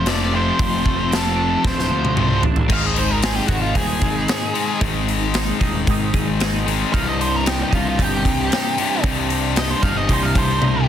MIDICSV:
0, 0, Header, 1, 6, 480
1, 0, Start_track
1, 0, Tempo, 527704
1, 543, Time_signature, 4, 2, 24, 8
1, 9898, End_track
2, 0, Start_track
2, 0, Title_t, "Lead electric guitar"
2, 0, Program_c, 0, 29
2, 84, Note_on_c, 0, 74, 88
2, 318, Note_off_c, 0, 74, 0
2, 322, Note_on_c, 0, 72, 91
2, 1042, Note_on_c, 0, 69, 86
2, 1055, Note_off_c, 0, 72, 0
2, 1516, Note_on_c, 0, 72, 75
2, 1528, Note_off_c, 0, 69, 0
2, 2195, Note_off_c, 0, 72, 0
2, 2482, Note_on_c, 0, 77, 90
2, 2604, Note_off_c, 0, 77, 0
2, 2604, Note_on_c, 0, 75, 70
2, 2712, Note_off_c, 0, 75, 0
2, 2714, Note_on_c, 0, 72, 79
2, 2825, Note_on_c, 0, 70, 78
2, 2827, Note_off_c, 0, 72, 0
2, 2957, Note_off_c, 0, 70, 0
2, 2957, Note_on_c, 0, 68, 73
2, 3053, Note_off_c, 0, 68, 0
2, 3053, Note_on_c, 0, 67, 73
2, 3156, Note_off_c, 0, 67, 0
2, 3159, Note_on_c, 0, 66, 74
2, 3289, Note_off_c, 0, 66, 0
2, 3293, Note_on_c, 0, 65, 76
2, 3423, Note_off_c, 0, 65, 0
2, 3423, Note_on_c, 0, 68, 86
2, 4357, Note_off_c, 0, 68, 0
2, 6307, Note_on_c, 0, 77, 82
2, 6424, Note_off_c, 0, 77, 0
2, 6441, Note_on_c, 0, 75, 81
2, 6559, Note_off_c, 0, 75, 0
2, 6559, Note_on_c, 0, 72, 89
2, 6695, Note_off_c, 0, 72, 0
2, 6695, Note_on_c, 0, 70, 94
2, 6803, Note_off_c, 0, 70, 0
2, 6803, Note_on_c, 0, 67, 78
2, 6912, Note_off_c, 0, 67, 0
2, 6943, Note_on_c, 0, 67, 86
2, 7039, Note_off_c, 0, 67, 0
2, 7042, Note_on_c, 0, 65, 85
2, 7151, Note_off_c, 0, 65, 0
2, 7173, Note_on_c, 0, 65, 79
2, 7298, Note_off_c, 0, 65, 0
2, 7298, Note_on_c, 0, 67, 77
2, 8212, Note_off_c, 0, 67, 0
2, 8725, Note_on_c, 0, 75, 89
2, 8826, Note_off_c, 0, 75, 0
2, 8826, Note_on_c, 0, 72, 83
2, 8937, Note_on_c, 0, 77, 85
2, 8941, Note_off_c, 0, 72, 0
2, 9055, Note_off_c, 0, 77, 0
2, 9070, Note_on_c, 0, 75, 80
2, 9182, Note_off_c, 0, 75, 0
2, 9216, Note_on_c, 0, 72, 73
2, 9303, Note_on_c, 0, 77, 78
2, 9315, Note_off_c, 0, 72, 0
2, 9418, Note_off_c, 0, 77, 0
2, 9445, Note_on_c, 0, 72, 91
2, 9897, Note_off_c, 0, 72, 0
2, 9898, End_track
3, 0, Start_track
3, 0, Title_t, "Clean electric guitar"
3, 0, Program_c, 1, 27
3, 0, Note_on_c, 1, 53, 64
3, 0, Note_on_c, 1, 57, 69
3, 0, Note_on_c, 1, 62, 76
3, 48, Note_on_c, 1, 60, 67
3, 282, Note_off_c, 1, 62, 0
3, 293, Note_on_c, 1, 62, 76
3, 531, Note_on_c, 1, 41, 76
3, 758, Note_off_c, 1, 57, 0
3, 769, Note_on_c, 1, 57, 60
3, 990, Note_off_c, 1, 60, 0
3, 1001, Note_on_c, 1, 60, 68
3, 1015, Note_off_c, 1, 53, 0
3, 1224, Note_off_c, 1, 62, 0
3, 1235, Note_on_c, 1, 62, 79
3, 1465, Note_off_c, 1, 57, 0
3, 1476, Note_on_c, 1, 57, 68
3, 1721, Note_on_c, 1, 53, 64
3, 1739, Note_off_c, 1, 41, 0
3, 1951, Note_off_c, 1, 60, 0
3, 1962, Note_on_c, 1, 60, 70
3, 2196, Note_off_c, 1, 62, 0
3, 2207, Note_on_c, 1, 62, 72
3, 2439, Note_on_c, 1, 44, 81
3, 2442, Note_off_c, 1, 60, 0
3, 2444, Note_off_c, 1, 53, 0
3, 2447, Note_on_c, 1, 51, 85
3, 2448, Note_on_c, 1, 56, 92
3, 2449, Note_off_c, 1, 57, 0
3, 2453, Note_on_c, 1, 60, 84
3, 2457, Note_off_c, 1, 62, 0
3, 2457, Note_on_c, 1, 63, 90
3, 2460, Note_on_c, 1, 68, 95
3, 2684, Note_off_c, 1, 68, 0
3, 2687, Note_on_c, 1, 68, 67
3, 2692, Note_off_c, 1, 63, 0
3, 2695, Note_on_c, 1, 63, 62
3, 2697, Note_off_c, 1, 60, 0
3, 2701, Note_on_c, 1, 60, 54
3, 2705, Note_off_c, 1, 56, 0
3, 2709, Note_on_c, 1, 56, 54
3, 2924, Note_off_c, 1, 56, 0
3, 2927, Note_on_c, 1, 56, 66
3, 2929, Note_off_c, 1, 60, 0
3, 2933, Note_on_c, 1, 60, 74
3, 2937, Note_off_c, 1, 51, 0
3, 2942, Note_off_c, 1, 63, 0
3, 2946, Note_on_c, 1, 63, 78
3, 2947, Note_off_c, 1, 68, 0
3, 2951, Note_on_c, 1, 68, 77
3, 3170, Note_off_c, 1, 68, 0
3, 3174, Note_on_c, 1, 68, 67
3, 3180, Note_off_c, 1, 63, 0
3, 3183, Note_on_c, 1, 63, 62
3, 3187, Note_off_c, 1, 60, 0
3, 3190, Note_on_c, 1, 60, 61
3, 3193, Note_off_c, 1, 56, 0
3, 3196, Note_on_c, 1, 56, 60
3, 3398, Note_off_c, 1, 44, 0
3, 3402, Note_on_c, 1, 44, 85
3, 3403, Note_off_c, 1, 56, 0
3, 3409, Note_on_c, 1, 51, 81
3, 3414, Note_on_c, 1, 56, 86
3, 3416, Note_off_c, 1, 63, 0
3, 3418, Note_off_c, 1, 60, 0
3, 3420, Note_off_c, 1, 68, 0
3, 3420, Note_on_c, 1, 63, 88
3, 3422, Note_on_c, 1, 60, 85
3, 3430, Note_on_c, 1, 68, 95
3, 3636, Note_off_c, 1, 68, 0
3, 3647, Note_on_c, 1, 68, 67
3, 3653, Note_off_c, 1, 63, 0
3, 3656, Note_on_c, 1, 63, 71
3, 3661, Note_off_c, 1, 60, 0
3, 3662, Note_off_c, 1, 56, 0
3, 3665, Note_on_c, 1, 60, 57
3, 3673, Note_on_c, 1, 56, 55
3, 3875, Note_off_c, 1, 56, 0
3, 3886, Note_on_c, 1, 56, 76
3, 3893, Note_off_c, 1, 60, 0
3, 3895, Note_off_c, 1, 44, 0
3, 3897, Note_on_c, 1, 60, 72
3, 3899, Note_off_c, 1, 51, 0
3, 3900, Note_off_c, 1, 63, 0
3, 3900, Note_off_c, 1, 68, 0
3, 3904, Note_on_c, 1, 63, 74
3, 3911, Note_on_c, 1, 68, 73
3, 4370, Note_off_c, 1, 56, 0
3, 4373, Note_on_c, 1, 44, 90
3, 4374, Note_on_c, 1, 51, 90
3, 4381, Note_on_c, 1, 56, 97
3, 4382, Note_off_c, 1, 60, 0
3, 4385, Note_off_c, 1, 68, 0
3, 4386, Note_off_c, 1, 63, 0
3, 4386, Note_on_c, 1, 60, 102
3, 4389, Note_on_c, 1, 63, 92
3, 4396, Note_on_c, 1, 68, 96
3, 4603, Note_off_c, 1, 68, 0
3, 4614, Note_on_c, 1, 68, 66
3, 4622, Note_off_c, 1, 63, 0
3, 4624, Note_off_c, 1, 60, 0
3, 4625, Note_off_c, 1, 56, 0
3, 4626, Note_on_c, 1, 63, 55
3, 4628, Note_on_c, 1, 60, 56
3, 4636, Note_on_c, 1, 56, 54
3, 4843, Note_off_c, 1, 56, 0
3, 4854, Note_on_c, 1, 56, 70
3, 4856, Note_off_c, 1, 60, 0
3, 4860, Note_on_c, 1, 60, 70
3, 4861, Note_off_c, 1, 44, 0
3, 4862, Note_off_c, 1, 51, 0
3, 4866, Note_off_c, 1, 63, 0
3, 4867, Note_off_c, 1, 68, 0
3, 4869, Note_on_c, 1, 63, 79
3, 4878, Note_on_c, 1, 68, 73
3, 5081, Note_off_c, 1, 68, 0
3, 5092, Note_on_c, 1, 68, 76
3, 5096, Note_off_c, 1, 63, 0
3, 5099, Note_on_c, 1, 63, 67
3, 5103, Note_off_c, 1, 60, 0
3, 5105, Note_off_c, 1, 56, 0
3, 5107, Note_on_c, 1, 60, 61
3, 5116, Note_on_c, 1, 56, 59
3, 5340, Note_off_c, 1, 56, 0
3, 5341, Note_on_c, 1, 44, 96
3, 5345, Note_on_c, 1, 51, 82
3, 5351, Note_on_c, 1, 56, 90
3, 5355, Note_off_c, 1, 60, 0
3, 5357, Note_off_c, 1, 68, 0
3, 5359, Note_on_c, 1, 60, 88
3, 5360, Note_off_c, 1, 63, 0
3, 5364, Note_on_c, 1, 63, 92
3, 5367, Note_on_c, 1, 68, 90
3, 5573, Note_off_c, 1, 68, 0
3, 5584, Note_on_c, 1, 68, 68
3, 5587, Note_off_c, 1, 63, 0
3, 5591, Note_on_c, 1, 63, 65
3, 5594, Note_off_c, 1, 56, 0
3, 5596, Note_off_c, 1, 60, 0
3, 5600, Note_on_c, 1, 60, 66
3, 5605, Note_on_c, 1, 56, 62
3, 5804, Note_off_c, 1, 56, 0
3, 5815, Note_on_c, 1, 56, 71
3, 5817, Note_off_c, 1, 60, 0
3, 5821, Note_on_c, 1, 60, 74
3, 5824, Note_off_c, 1, 63, 0
3, 5825, Note_off_c, 1, 44, 0
3, 5826, Note_off_c, 1, 68, 0
3, 5827, Note_off_c, 1, 51, 0
3, 5827, Note_on_c, 1, 63, 81
3, 5837, Note_on_c, 1, 68, 81
3, 6287, Note_off_c, 1, 56, 0
3, 6296, Note_on_c, 1, 36, 94
3, 6298, Note_off_c, 1, 68, 0
3, 6303, Note_on_c, 1, 43, 90
3, 6310, Note_off_c, 1, 60, 0
3, 6310, Note_on_c, 1, 48, 95
3, 6314, Note_on_c, 1, 55, 99
3, 6321, Note_off_c, 1, 63, 0
3, 6321, Note_on_c, 1, 63, 110
3, 6526, Note_off_c, 1, 63, 0
3, 6530, Note_on_c, 1, 63, 68
3, 6537, Note_off_c, 1, 55, 0
3, 6541, Note_on_c, 1, 55, 65
3, 6549, Note_off_c, 1, 48, 0
3, 6552, Note_on_c, 1, 48, 51
3, 6750, Note_off_c, 1, 43, 0
3, 6761, Note_on_c, 1, 43, 78
3, 6767, Note_off_c, 1, 48, 0
3, 6771, Note_on_c, 1, 48, 73
3, 6772, Note_off_c, 1, 55, 0
3, 6775, Note_on_c, 1, 55, 75
3, 6780, Note_off_c, 1, 63, 0
3, 6784, Note_on_c, 1, 63, 84
3, 7006, Note_off_c, 1, 63, 0
3, 7010, Note_on_c, 1, 63, 75
3, 7016, Note_off_c, 1, 55, 0
3, 7019, Note_on_c, 1, 55, 64
3, 7028, Note_off_c, 1, 48, 0
3, 7032, Note_on_c, 1, 48, 62
3, 7247, Note_off_c, 1, 36, 0
3, 7248, Note_off_c, 1, 43, 0
3, 7251, Note_on_c, 1, 36, 83
3, 7253, Note_off_c, 1, 48, 0
3, 7258, Note_on_c, 1, 43, 92
3, 7259, Note_off_c, 1, 55, 0
3, 7264, Note_on_c, 1, 48, 92
3, 7266, Note_off_c, 1, 63, 0
3, 7270, Note_on_c, 1, 55, 89
3, 7276, Note_on_c, 1, 63, 106
3, 7493, Note_off_c, 1, 63, 0
3, 7502, Note_off_c, 1, 55, 0
3, 7504, Note_on_c, 1, 63, 68
3, 7512, Note_off_c, 1, 48, 0
3, 7513, Note_on_c, 1, 55, 64
3, 7523, Note_on_c, 1, 48, 57
3, 7717, Note_off_c, 1, 43, 0
3, 7728, Note_off_c, 1, 48, 0
3, 7728, Note_on_c, 1, 43, 71
3, 7738, Note_off_c, 1, 36, 0
3, 7739, Note_on_c, 1, 48, 86
3, 7741, Note_off_c, 1, 55, 0
3, 7746, Note_off_c, 1, 63, 0
3, 7752, Note_on_c, 1, 55, 76
3, 7757, Note_on_c, 1, 63, 86
3, 8208, Note_off_c, 1, 43, 0
3, 8209, Note_on_c, 1, 36, 88
3, 8210, Note_off_c, 1, 48, 0
3, 8217, Note_off_c, 1, 55, 0
3, 8218, Note_on_c, 1, 43, 93
3, 8221, Note_off_c, 1, 63, 0
3, 8221, Note_on_c, 1, 48, 98
3, 8228, Note_on_c, 1, 55, 103
3, 8232, Note_on_c, 1, 63, 92
3, 8437, Note_off_c, 1, 63, 0
3, 8448, Note_on_c, 1, 63, 61
3, 8450, Note_off_c, 1, 55, 0
3, 8458, Note_off_c, 1, 48, 0
3, 8461, Note_on_c, 1, 55, 56
3, 8469, Note_on_c, 1, 48, 49
3, 8677, Note_off_c, 1, 43, 0
3, 8688, Note_on_c, 1, 43, 70
3, 8692, Note_off_c, 1, 48, 0
3, 8695, Note_off_c, 1, 36, 0
3, 8697, Note_off_c, 1, 55, 0
3, 8703, Note_on_c, 1, 48, 74
3, 8704, Note_off_c, 1, 63, 0
3, 8708, Note_on_c, 1, 55, 77
3, 8714, Note_on_c, 1, 63, 83
3, 8915, Note_off_c, 1, 63, 0
3, 8926, Note_on_c, 1, 63, 73
3, 8928, Note_off_c, 1, 55, 0
3, 8939, Note_on_c, 1, 55, 72
3, 8943, Note_off_c, 1, 48, 0
3, 8954, Note_on_c, 1, 48, 60
3, 9164, Note_off_c, 1, 43, 0
3, 9168, Note_on_c, 1, 36, 92
3, 9170, Note_off_c, 1, 48, 0
3, 9174, Note_on_c, 1, 43, 96
3, 9177, Note_off_c, 1, 55, 0
3, 9180, Note_on_c, 1, 48, 93
3, 9182, Note_off_c, 1, 63, 0
3, 9188, Note_on_c, 1, 55, 92
3, 9193, Note_on_c, 1, 63, 105
3, 9399, Note_off_c, 1, 63, 0
3, 9410, Note_off_c, 1, 55, 0
3, 9410, Note_on_c, 1, 63, 67
3, 9418, Note_off_c, 1, 48, 0
3, 9421, Note_on_c, 1, 55, 62
3, 9429, Note_on_c, 1, 48, 54
3, 9640, Note_off_c, 1, 43, 0
3, 9648, Note_off_c, 1, 48, 0
3, 9651, Note_on_c, 1, 43, 75
3, 9652, Note_off_c, 1, 55, 0
3, 9653, Note_off_c, 1, 36, 0
3, 9659, Note_on_c, 1, 48, 72
3, 9663, Note_on_c, 1, 55, 87
3, 9664, Note_off_c, 1, 63, 0
3, 9674, Note_on_c, 1, 63, 75
3, 9898, Note_off_c, 1, 43, 0
3, 9898, Note_off_c, 1, 48, 0
3, 9898, Note_off_c, 1, 55, 0
3, 9898, Note_off_c, 1, 63, 0
3, 9898, End_track
4, 0, Start_track
4, 0, Title_t, "Distorted electric guitar"
4, 0, Program_c, 2, 30
4, 54, Note_on_c, 2, 41, 73
4, 65, Note_on_c, 2, 48, 74
4, 71, Note_on_c, 2, 53, 79
4, 284, Note_off_c, 2, 41, 0
4, 289, Note_off_c, 2, 48, 0
4, 292, Note_off_c, 2, 53, 0
4, 293, Note_on_c, 2, 41, 92
4, 303, Note_on_c, 2, 48, 87
4, 314, Note_on_c, 2, 53, 91
4, 1958, Note_off_c, 2, 41, 0
4, 1969, Note_on_c, 2, 41, 72
4, 1971, Note_off_c, 2, 48, 0
4, 1977, Note_off_c, 2, 53, 0
4, 1980, Note_on_c, 2, 48, 74
4, 1992, Note_on_c, 2, 53, 84
4, 2203, Note_off_c, 2, 41, 0
4, 2209, Note_off_c, 2, 48, 0
4, 2215, Note_off_c, 2, 53, 0
4, 2438, Note_on_c, 2, 44, 77
4, 2456, Note_on_c, 2, 51, 83
4, 2463, Note_on_c, 2, 56, 99
4, 4118, Note_off_c, 2, 56, 0
4, 4120, Note_off_c, 2, 44, 0
4, 4129, Note_off_c, 2, 51, 0
4, 4129, Note_on_c, 2, 56, 82
4, 4139, Note_on_c, 2, 51, 67
4, 4150, Note_on_c, 2, 44, 71
4, 4353, Note_off_c, 2, 44, 0
4, 4364, Note_off_c, 2, 56, 0
4, 4364, Note_on_c, 2, 44, 93
4, 4365, Note_off_c, 2, 51, 0
4, 4376, Note_on_c, 2, 51, 98
4, 4386, Note_on_c, 2, 56, 90
4, 6042, Note_off_c, 2, 44, 0
4, 6047, Note_off_c, 2, 56, 0
4, 6048, Note_off_c, 2, 51, 0
4, 6058, Note_on_c, 2, 56, 85
4, 6070, Note_on_c, 2, 51, 80
4, 6084, Note_on_c, 2, 44, 66
4, 6289, Note_off_c, 2, 56, 0
4, 6295, Note_off_c, 2, 51, 0
4, 6300, Note_off_c, 2, 44, 0
4, 6304, Note_on_c, 2, 36, 97
4, 6312, Note_on_c, 2, 43, 93
4, 6323, Note_on_c, 2, 48, 97
4, 7965, Note_off_c, 2, 48, 0
4, 7969, Note_off_c, 2, 36, 0
4, 7973, Note_off_c, 2, 43, 0
4, 7976, Note_on_c, 2, 48, 76
4, 7987, Note_on_c, 2, 43, 68
4, 7998, Note_on_c, 2, 36, 66
4, 8196, Note_off_c, 2, 36, 0
4, 8206, Note_off_c, 2, 48, 0
4, 8207, Note_off_c, 2, 43, 0
4, 8207, Note_on_c, 2, 36, 92
4, 8218, Note_on_c, 2, 43, 94
4, 8226, Note_on_c, 2, 48, 90
4, 9876, Note_off_c, 2, 36, 0
4, 9881, Note_off_c, 2, 43, 0
4, 9882, Note_off_c, 2, 48, 0
4, 9898, End_track
5, 0, Start_track
5, 0, Title_t, "Picked electric bass"
5, 0, Program_c, 3, 34
5, 0, Note_on_c, 3, 29, 91
5, 455, Note_off_c, 3, 29, 0
5, 540, Note_on_c, 3, 29, 112
5, 750, Note_off_c, 3, 29, 0
5, 786, Note_on_c, 3, 29, 85
5, 1412, Note_off_c, 3, 29, 0
5, 1501, Note_on_c, 3, 26, 86
5, 1711, Note_off_c, 3, 26, 0
5, 1732, Note_on_c, 3, 38, 83
5, 1954, Note_off_c, 3, 38, 0
5, 1987, Note_on_c, 3, 36, 82
5, 2202, Note_off_c, 3, 36, 0
5, 2219, Note_on_c, 3, 33, 80
5, 2438, Note_off_c, 3, 33, 0
5, 2459, Note_on_c, 3, 32, 91
5, 3089, Note_off_c, 3, 32, 0
5, 3171, Note_on_c, 3, 32, 92
5, 3387, Note_off_c, 3, 32, 0
5, 3416, Note_on_c, 3, 27, 84
5, 3630, Note_off_c, 3, 27, 0
5, 3654, Note_on_c, 3, 32, 82
5, 3869, Note_off_c, 3, 32, 0
5, 4377, Note_on_c, 3, 32, 93
5, 5009, Note_off_c, 3, 32, 0
5, 5104, Note_on_c, 3, 27, 80
5, 5315, Note_off_c, 3, 27, 0
5, 5350, Note_on_c, 3, 32, 89
5, 5558, Note_off_c, 3, 32, 0
5, 5588, Note_on_c, 3, 32, 90
5, 6214, Note_off_c, 3, 32, 0
5, 6313, Note_on_c, 3, 36, 95
5, 6936, Note_off_c, 3, 36, 0
5, 7035, Note_on_c, 3, 36, 97
5, 7240, Note_off_c, 3, 36, 0
5, 7270, Note_on_c, 3, 31, 83
5, 7477, Note_off_c, 3, 31, 0
5, 7508, Note_on_c, 3, 36, 86
5, 7716, Note_off_c, 3, 36, 0
5, 8223, Note_on_c, 3, 36, 93
5, 8848, Note_off_c, 3, 36, 0
5, 8941, Note_on_c, 3, 31, 85
5, 9149, Note_off_c, 3, 31, 0
5, 9185, Note_on_c, 3, 36, 85
5, 9391, Note_off_c, 3, 36, 0
5, 9421, Note_on_c, 3, 36, 90
5, 9629, Note_off_c, 3, 36, 0
5, 9662, Note_on_c, 3, 36, 82
5, 9876, Note_off_c, 3, 36, 0
5, 9898, End_track
6, 0, Start_track
6, 0, Title_t, "Drums"
6, 55, Note_on_c, 9, 46, 50
6, 64, Note_on_c, 9, 38, 103
6, 146, Note_off_c, 9, 46, 0
6, 155, Note_off_c, 9, 38, 0
6, 540, Note_on_c, 9, 36, 102
6, 544, Note_on_c, 9, 46, 50
6, 631, Note_off_c, 9, 36, 0
6, 635, Note_off_c, 9, 46, 0
6, 779, Note_on_c, 9, 36, 86
6, 870, Note_off_c, 9, 36, 0
6, 1022, Note_on_c, 9, 46, 50
6, 1031, Note_on_c, 9, 38, 109
6, 1113, Note_off_c, 9, 46, 0
6, 1122, Note_off_c, 9, 38, 0
6, 1497, Note_on_c, 9, 36, 108
6, 1510, Note_on_c, 9, 38, 56
6, 1588, Note_off_c, 9, 36, 0
6, 1601, Note_off_c, 9, 38, 0
6, 1628, Note_on_c, 9, 38, 47
6, 1719, Note_off_c, 9, 38, 0
6, 1862, Note_on_c, 9, 48, 60
6, 1953, Note_off_c, 9, 48, 0
6, 1973, Note_on_c, 9, 47, 79
6, 2064, Note_off_c, 9, 47, 0
6, 2212, Note_on_c, 9, 43, 89
6, 2303, Note_off_c, 9, 43, 0
6, 2330, Note_on_c, 9, 43, 82
6, 2421, Note_off_c, 9, 43, 0
6, 2453, Note_on_c, 9, 49, 103
6, 2454, Note_on_c, 9, 36, 105
6, 2544, Note_off_c, 9, 49, 0
6, 2545, Note_off_c, 9, 36, 0
6, 2695, Note_on_c, 9, 46, 54
6, 2786, Note_off_c, 9, 46, 0
6, 2934, Note_on_c, 9, 46, 74
6, 2943, Note_on_c, 9, 38, 104
6, 3025, Note_off_c, 9, 46, 0
6, 3034, Note_off_c, 9, 38, 0
6, 3168, Note_on_c, 9, 46, 60
6, 3171, Note_on_c, 9, 36, 79
6, 3259, Note_off_c, 9, 46, 0
6, 3262, Note_off_c, 9, 36, 0
6, 3413, Note_on_c, 9, 36, 85
6, 3415, Note_on_c, 9, 46, 76
6, 3504, Note_off_c, 9, 36, 0
6, 3506, Note_off_c, 9, 46, 0
6, 3652, Note_on_c, 9, 46, 60
6, 3654, Note_on_c, 9, 36, 84
6, 3742, Note_off_c, 9, 46, 0
6, 3745, Note_off_c, 9, 36, 0
6, 3896, Note_on_c, 9, 46, 74
6, 3906, Note_on_c, 9, 38, 107
6, 3987, Note_off_c, 9, 46, 0
6, 3997, Note_off_c, 9, 38, 0
6, 4141, Note_on_c, 9, 46, 57
6, 4232, Note_off_c, 9, 46, 0
6, 4376, Note_on_c, 9, 46, 72
6, 4377, Note_on_c, 9, 36, 111
6, 4467, Note_off_c, 9, 46, 0
6, 4468, Note_off_c, 9, 36, 0
6, 4626, Note_on_c, 9, 46, 51
6, 4716, Note_off_c, 9, 46, 0
6, 4857, Note_on_c, 9, 46, 76
6, 4866, Note_on_c, 9, 38, 102
6, 4948, Note_off_c, 9, 46, 0
6, 4957, Note_off_c, 9, 38, 0
6, 5102, Note_on_c, 9, 36, 80
6, 5102, Note_on_c, 9, 46, 54
6, 5193, Note_off_c, 9, 36, 0
6, 5193, Note_off_c, 9, 46, 0
6, 5342, Note_on_c, 9, 36, 89
6, 5343, Note_on_c, 9, 46, 70
6, 5433, Note_off_c, 9, 36, 0
6, 5434, Note_off_c, 9, 46, 0
6, 5583, Note_on_c, 9, 46, 53
6, 5584, Note_on_c, 9, 36, 82
6, 5674, Note_off_c, 9, 46, 0
6, 5675, Note_off_c, 9, 36, 0
6, 5825, Note_on_c, 9, 46, 72
6, 5834, Note_on_c, 9, 38, 107
6, 5916, Note_off_c, 9, 46, 0
6, 5925, Note_off_c, 9, 38, 0
6, 6076, Note_on_c, 9, 46, 55
6, 6167, Note_off_c, 9, 46, 0
6, 6311, Note_on_c, 9, 36, 100
6, 6316, Note_on_c, 9, 46, 76
6, 6402, Note_off_c, 9, 36, 0
6, 6407, Note_off_c, 9, 46, 0
6, 6558, Note_on_c, 9, 46, 57
6, 6649, Note_off_c, 9, 46, 0
6, 6789, Note_on_c, 9, 46, 75
6, 6798, Note_on_c, 9, 38, 110
6, 6880, Note_off_c, 9, 46, 0
6, 6889, Note_off_c, 9, 38, 0
6, 7027, Note_on_c, 9, 36, 80
6, 7032, Note_on_c, 9, 46, 57
6, 7118, Note_off_c, 9, 36, 0
6, 7123, Note_off_c, 9, 46, 0
6, 7267, Note_on_c, 9, 36, 86
6, 7274, Note_on_c, 9, 46, 79
6, 7358, Note_off_c, 9, 36, 0
6, 7365, Note_off_c, 9, 46, 0
6, 7506, Note_on_c, 9, 36, 83
6, 7510, Note_on_c, 9, 46, 59
6, 7597, Note_off_c, 9, 36, 0
6, 7601, Note_off_c, 9, 46, 0
6, 7750, Note_on_c, 9, 46, 77
6, 7759, Note_on_c, 9, 38, 101
6, 7841, Note_off_c, 9, 46, 0
6, 7850, Note_off_c, 9, 38, 0
6, 7987, Note_on_c, 9, 46, 58
6, 8078, Note_off_c, 9, 46, 0
6, 8220, Note_on_c, 9, 36, 107
6, 8220, Note_on_c, 9, 46, 77
6, 8311, Note_off_c, 9, 36, 0
6, 8311, Note_off_c, 9, 46, 0
6, 8462, Note_on_c, 9, 46, 52
6, 8553, Note_off_c, 9, 46, 0
6, 8698, Note_on_c, 9, 46, 79
6, 8707, Note_on_c, 9, 38, 105
6, 8789, Note_off_c, 9, 46, 0
6, 8798, Note_off_c, 9, 38, 0
6, 8939, Note_on_c, 9, 36, 82
6, 8940, Note_on_c, 9, 46, 55
6, 9030, Note_off_c, 9, 36, 0
6, 9031, Note_off_c, 9, 46, 0
6, 9178, Note_on_c, 9, 36, 84
6, 9180, Note_on_c, 9, 46, 73
6, 9269, Note_off_c, 9, 36, 0
6, 9271, Note_off_c, 9, 46, 0
6, 9417, Note_on_c, 9, 46, 57
6, 9418, Note_on_c, 9, 36, 87
6, 9508, Note_off_c, 9, 46, 0
6, 9509, Note_off_c, 9, 36, 0
6, 9657, Note_on_c, 9, 48, 59
6, 9748, Note_off_c, 9, 48, 0
6, 9898, End_track
0, 0, End_of_file